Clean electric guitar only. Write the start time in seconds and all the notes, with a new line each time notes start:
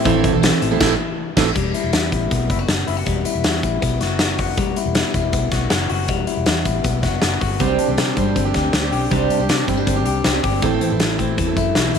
Already playing: C4 E4
0.05 E3
0.24 E3
0.42 C4
0.61 E3
1.55 G3
1.74 E4
1.93 B3
2.12 E4
2.31 B3
2.50 E4
2.59 F#4
2.68 B3
2.87 E4
2.97 F#4
3.06 G3
3.25 E4
3.44 B3
3.63 E4
3.82 B3
4.01 F#4
4.20 B3
4.39 F#4
4.58 G3
4.77 E4
4.95 B3
5.14 E4
5.33 B3
5.52 F#4
5.71 B3
5.90 F#4
6.09 G3
6.27 E4
6.46 B3
6.65 E4
6.84 B3
7.03 F#4
7.22 B3
7.41 F#4
7.60 G3
7.79 D4
7.98 C4
8.17 D4
8.36 C4
8.55 G4
8.74 C4
8.93 G4
9.12 G3
9.30 D4
9.49 C4
9.68 C4
9.77 D4
9.87 C4
10.05 G4
10.24 C4
10.43 G4
10.62 E3
10.81 C4
11.00 E3
11.19 C4
11.38 E3
11.57 E4
11.76 E3
11.95 E4